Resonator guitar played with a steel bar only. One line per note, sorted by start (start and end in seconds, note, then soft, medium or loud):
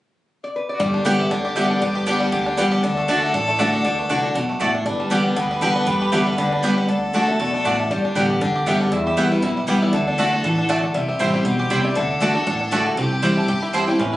0.44 0.54 D5 medium
0.56 0.68 B4 medium
0.69 0.80 D5 medium
0.81 1.17 D5 medium
1.20 1.31 E5 medium
1.32 1.41 D5 medium
1.41 1.45 C#5 medium
1.46 1.57 D5 medium
1.57 1.69 E5 medium
1.71 1.81 D5 medium
1.83 1.95 D5 medium
1.96 2.06 B4 medium
2.08 2.44 D5 medium
2.47 2.57 D5 medium
2.59 2.72 B4 medium
2.72 2.83 D5 medium
2.84 3.23 D5 medium
3.23 3.33 E5 medium
3.34 3.47 D5 medium
3.49 3.59 D5 medium
3.60 3.73 E5 loud
3.73 3.83 D5 medium
3.85 3.97 D5 medium
3.99 4.10 B4 medium
4.11 4.60 D5 medium
4.61 4.84 E5 medium
4.86 4.91 D5 medium
5.00 5.10 A5 loud
5.11 5.35 G5 medium
5.36 5.63 G5 loud
5.62 5.85 A5 loud
5.87 6.13 G5 medium
6.12 6.36 E5 medium
6.38 6.51 D5 medium
6.52 6.64 D5 medium
6.64 6.77 B4 medium
6.78 6.87 D5 medium
6.89 7.25 D5 medium
7.28 7.39 E5 medium
7.40 7.52 D5 medium
7.54 7.64 D5 medium
7.66 7.78 F#5 medium
7.79 7.91 E5 medium
7.91 8.03 D5 medium
8.04 8.16 D5 medium
8.16 8.59 G5 medium
8.59 8.77 F#5 medium
8.68 8.80 E5 medium
8.82 8.93 D5 medium
8.93 9.06 E5 loud
9.07 9.32 E5 loud
9.32 9.43 B4 medium
9.44 9.80 B4 medium
9.83 9.93 D5 medium
9.94 10.07 E5 loud
10.08 10.19 D5 loud
10.20 10.66 F#5 loud
10.70 10.84 E5 loud
10.83 10.94 D5 medium
10.96 11.08 E5 medium
11.09 11.35 E5 loud
11.34 11.44 C5 medium
11.46 11.84 C5 medium
11.84 11.95 D5 medium
11.97 12.11 E5 medium
12.10 12.22 D5 medium
12.22 12.82 F#5 medium
13.12 13.37 G5 medium
13.37 13.49 A5 medium
13.49 13.61 G5 loud
13.62 13.67 B5 loud
13.74 13.87 A5 loud
13.88 13.99 G5 medium
14.00 14.17 E5 medium